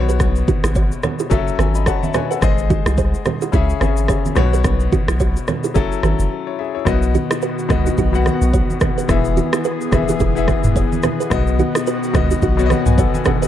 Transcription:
Already playing: B1 B2 B3 F#4
0.00 C#5
0.09 G#4 B4, shaker
0.20 kick, cross-stick, low conga, shaker
0.36 shaker
0.48 D#4 F#4, kick, high conga, shaker
0.64 G#1 E4 G#4, cross-stick, shaker
0.75 F#4 C#5, kick, shaker
0.92 shaker
1.03 A4 C#5, cross-stick, high conga, low conga, shaker
1.19 E4 G#4, shaker
1.30 F#1 F#3 C#4 F#4 A4 E5, kick, shaker
1.48 shaker
1.59 G#1 G#4 B4 G#5, cross-stick, high conga, shaker
1.75 D#5 B5, shaker
1.86 A4 C#5 F#5 A5, kick, cross-stick, shaker
2.02 E5, high conga, shaker
2.14 G#4 B4 C#5 G#5, cross-stick, high conga, low conga, shaker
2.30 G#4 A4 B4 F#5, shaker
2.41 G#1 G#3 G#4 C5 D#5, kick, cross-stick, low conga, shaker
2.58 shaker
2.70 D#4 F#4, kick, high conga, shaker
2.86 C2 E4 G#4, cross-stick, shaker
2.98 G#4 C5, kick, shaker
3.14 shaker
3.25 G#4 C5, cross-stick, high conga, low conga, shaker
3.42 E4 G#4, shaker
3.52 C#2 C#3 C#4 E4 G#4 E5, kick, shaker
3.70 shaker
3.80 G#1 C#3 C#4 G#4 B4 E5, cross-stick, high conga, shaker
3.97 shaker
4.08 G#4 C#5, kick, cross-stick, shaker
4.26 high conga, shaker
4.35 B1 B2 B3 F#4 B4 C#5, cross-stick, high conga, low conga, shaker
4.53 G#4 B4, shaker
4.64 kick, cross-stick, low conga, shaker
4.80 shaker
4.92 D#4 F#4, kick, high conga, shaker
5.08 B1 E4 G#4, cross-stick, shaker
5.20 F#4 C#5, kick, shaker
5.37 shaker
5.47 A4 C#5, cross-stick, high conga, low conga, shaker
5.64 E4 G#4, shaker
5.74 F#1 F#3 C#4 E4 F#4 A4, kick, shaker
5.92 shaker
6.03 G#1 G#4 B4, cross-stick, high conga, shaker
6.19 F#1, shaker
6.47 E4 C#5
6.59 G#4 E5
6.75 E4 C#5
6.85 B1 B2 D#3 B3 F#4 D#5, kick, cross-stick, low conga, shaker
7.02 shaker
7.15 D#4 F#4, high conga, shaker
7.31 E4 G#4, cross-stick, shaker
7.42 F#4 B4, shaker
7.59 shaker
7.69 C#2 B2 B3 F#4 G#4 B4 D#5, kick, cross-stick, high conga, low conga, shaker
7.86 D#4 F#4, shaker
7.98 B1 D#4 F#4, kick, shaker
8.13 B2 B3 F#4 F#5, shaker
8.26 G#4 B4, cross-stick, high conga, shaker
8.42 B1, shaker
8.53 F#4 C#5, kick, shaker
8.70 high conga, shaker
8.80 G#4 B4, kick, cross-stick, high conga, low conga, shaker
8.98 G#4 B4, shaker
9.08 E1 E3 B3 G#4 E5, kick, cross-stick, low conga, shaker
9.25 shaker
9.37 D#4 F#4, high conga, shaker
9.53 E4 G#4, cross-stick, shaker
9.64 G#4 B4, shaker
9.81 shaker
9.91 F#1 E3 B3 G#4 B4 E5, kick, cross-stick, high conga, low conga, shaker
10.09 E4 G#4, shaker
10.20 E1 E4 G#4, kick, shaker
10.35 E3 B3 G#4 E5, shaker
10.48 G#4 B4, kick, cross-stick, high conga, shaker
10.64 E1, mid tom, shaker
10.76 G#4 C#5, kick, shaker
10.92 high conga, shaker
11.03 G#4 B4, cross-stick, high conga, low conga, shaker
11.20 G#4 B4, shaker
11.30 B1 B2 D#3 B3 F#4 D#5, kick, cross-stick, low conga, shaker
11.47 shaker
11.59 D#4 F#4, high conga, shaker
11.75 E4 G#4, cross-stick, shaker
11.87 F#4 B4, shaker
12.03 shaker
12.13 C#2 B2 B3 F#4 G#4 B4 D#5, kick, cross-stick, high conga, low conga, shaker
12.31 D#4 F#4, shaker
12.42 B1 D#4 F#4, kick, shaker
12.57 B2 B3 F#4 C#5, shaker
12.66 D#5
12.70 G#4 B4 D#5 B5, cross-stick, high conga, shaker
12.86 B1 B4 G#5, mid tom, shaker
12.98 F#4 A4 C#5 F#5, kick, shaker
13.14 B4 G#5, high conga, shaker
13.25 G#4 A4 B4 F#5, kick, cross-stick, high conga, low conga, shaker
13.42 F#4 G#4 B4 D#5, shaker

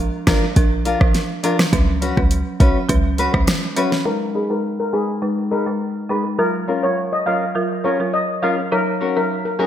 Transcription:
Already playing: A#1
0.27 G#1 F3 D4 F4 A#4, kick, cross-stick, snare, closed hi-hat
0.56 A#1 F3 D4 A#4, kick, closed hi-hat
0.85 D4 F4 A#4, closed hi-hat
1.01 A#1 F3 D4 A#4, muted nylon-string guitar stroke, kick, cross-stick
1.15 snare, closed hi-hat
1.43 F3 D4 F4 A#4, closed hi-hat
1.59 muted nylon-string guitar stroke, cross-stick, snare
1.73 C#2 F#3 C#4 B4, kick, closed hi-hat
2.01 C#4 F#4 B4, closed hi-hat
2.17 C#2 F#3 C#4 B4, kick
2.31 closed hi-hat
2.60 B1 F#3 C#4 F#4 B4, kick, closed hi-hat
2.89 C#2 F#3 C#4 B4, kick, closed hi-hat
3.18 C#4 F#4 B4, closed hi-hat
3.34 C#2 F#3 C#4 B4, muted nylon-string guitar stroke, kick, cross-stick
3.47 cross-stick, snare, closed hi-hat
3.76 F#3 C#4 F#4 B4, closed hi-hat
3.92 muted nylon-string guitar stroke, snare
4.05 G#3 D#4 A#4 B4
4.34 D#4 G#4 B4
4.50 G#3 D#4 A#4 B4
4.80 A#4
4.93 G#3 D#4 G#4 B4
5.22 G#3 D#4 B4
5.51 D#4 G#4 A#4 B4
5.66 G#3 D#4 B4, muted nylon-string guitar stroke
6.09 G#3 D#4 G#4 B4
6.25 muted nylon-string guitar stroke
6.39 F#3 F4 A#4
6.68 C#4 F4 A#4
6.83 F#3 F4 A#4 C#5
7.13 D#5
7.26 F#3 C#4 F4 A#4 F5
7.55 F#3 F4 A#4
7.84 C#4 F4 A#4 C#5
8.00 F#3 F4 A#4, muted nylon-string guitar stroke
8.14 D#5
8.42 F#3 C#4 F4 A#4 F5
8.58 muted nylon-string guitar stroke
8.72 F#3 D#4 A#4 C#5
9.00 C#4 F#4 A#4
9.16 F#3 D#4 A#4 C#5
9.45 A#4
9.59 F#3 C#4 D#4 F#4 G#4 A#4 C#5

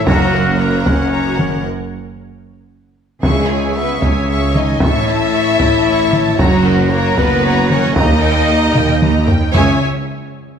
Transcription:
Already playing: C#5
0.05 F#1 F#2 F#3 A#3 F#4 A#4 C#5 F#5 A#5, taiko
0.34 A#4 F#5
0.59 A#3 F#4 A#4 C#5 A#5
0.85 C#4 A#4 C#5 F#5, taiko
1.11 F#4 C#5 A#5
1.37 A#4 F#5, taiko mid
3.22 C#2 C#3 G#3 C#4 G#4 C#5 E5 C#6, taiko
3.48 C#5 G#5
3.74 B3 G#4 B4 E5 C#6
4.00 C#2 C#4 C#5 G#5, taiko
4.04 C#5
4.29 G#4 E5 C#6
4.55 D#4 C#5 D#5 G#5, taiko mid
4.80 A1 A2 E4 A4 C#5 E5 A5 C#6, taiko
5.08 C#5 E5 A5
5.34 C#5 E5 C#6
5.59 A1 A2 C#5 E5 A5, taiko
5.86 C#5 E5 C#6
6.13 C#5 E5 A5, taiko mid
6.38 F#1 F#2 F#3 F#4 C#5 F#5 A#5, taiko
6.65 A#4 F#5
6.91 A#3 F#4 A#4 C#5 A#5
7.17 F#1 F#2 B3 A#4 B4 F#5, taiko
7.45 F#4 C#5 A#5
7.70 C#4 A#4 C#5 F#5, taiko mid
7.96 D#2 A#3 D#4 G4 D#5 G5 A#5, taiko
8.23 A#4 G5
8.49 G4 D#5 A#5
8.75 D#2 A#4 G5, taiko low-mid
9.02 G4 D#5 A#5, taiko mid
9.28 A#4 G5, taiko low
9.53 C#2 C#3 C#4 G#4 C#5 E5 G#5, taiko low

